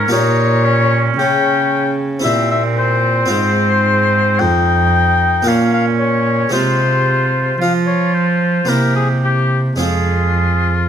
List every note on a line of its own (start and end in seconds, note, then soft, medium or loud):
0.08 1.17 A#2 medium
0.08 2.19 A#3 soft
0.08 0.66 D#4 medium
0.08 2.20 F4 soft
0.08 2.21 G4 soft
0.12 1.16 A#2 soft
0.12 1.01 C#5 medium
0.64 1.97 C#4 medium
1.18 2.26 C#3 medium
1.18 2.21 C#3 soft
1.18 1.95 G5 medium
2.19 3.25 C4 soft
2.19 3.26 E4 soft
2.19 3.27 G4 soft
2.24 3.27 A#2 soft
2.24 3.31 A#2 soft
2.24 4.43 C4 medium
2.24 2.49 E5 medium
2.51 2.63 E5 medium
2.78 3.30 C5 medium
3.26 5.40 C4 soft
3.26 5.41 F4 soft
3.30 4.36 G#2 soft
3.30 4.42 G#2 medium
3.30 4.41 C5 medium
4.39 5.42 F2 soft
4.39 5.47 F2 medium
4.39 5.49 D#4 medium
4.39 5.49 G5 medium
5.42 6.48 A#3 soft
5.42 6.49 F4 soft
5.47 6.49 A#2 soft
5.47 6.52 A#2 soft
5.47 6.54 C#4 medium
5.47 5.73 F5 medium
5.74 5.86 F5 medium
5.99 6.52 C#5 medium
6.49 8.64 G#3 soft
6.49 8.64 C4 soft
6.49 8.65 F4 soft
6.49 7.58 F4 soft
6.49 7.59 C5 medium
6.53 7.59 C3 soft
6.53 7.57 C3 soft
7.58 8.67 F3 soft
7.58 8.66 F3 soft
7.58 8.66 F4 medium
7.58 7.73 F5 medium
7.87 8.16 C#5 medium
8.14 8.71 C5 medium
8.65 9.75 A#3 soft
8.65 9.75 C4 soft
8.65 9.76 E4 soft
8.65 9.48 G4 soft
8.65 8.95 A#4 medium
8.70 9.76 C3 soft
8.70 9.78 C3 soft
8.96 9.09 G#4 soft
9.24 9.60 G4 medium
9.76 10.89 G#3 soft
9.76 10.89 C4 soft
9.76 10.89 F4 soft
9.76 10.75 G#4 soft
9.80 10.88 F2 soft
9.80 10.89 F2 medium
9.80 10.89 F4 medium